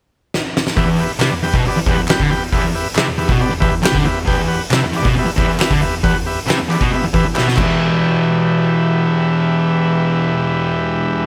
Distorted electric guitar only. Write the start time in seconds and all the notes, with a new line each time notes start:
0.77 E2
0.86 E2
1.19 C3
1.31 E2
1.43 E2
1.54 B2
1.65 muted distorted electric guitar stroke
1.77 E2
1.87 E2
1.99 E2
2.10 muted distorted electric guitar stroke
2.20 D3
2.31 E2
2.53 E2
2.64 E2
2.96 C3
3.07 E2
3.18 E2
3.28 B2
3.38 muted distorted electric guitar stroke
3.50 E2
3.61 E2
3.72 E2
3.82 muted distorted electric guitar stroke
3.92 D3
4.03 E2
4.25 E2
4.38 E2
4.70 C3
4.81 E2
4.92 E2
5.02 B2
5.15 muted distorted electric guitar stroke
5.25 E2
5.36 E2
5.47 E2
5.59 muted distorted electric guitar stroke
5.70 D3
5.81 E2
6.03 E2
6.14 E2
6.46 C3
6.58 E2
6.69 E2
6.80 B2
6.92 muted distorted electric guitar stroke
7.03 E2
7.13 E2
7.25 E2
7.36 B2
7.57 E2 B2
7.62 E3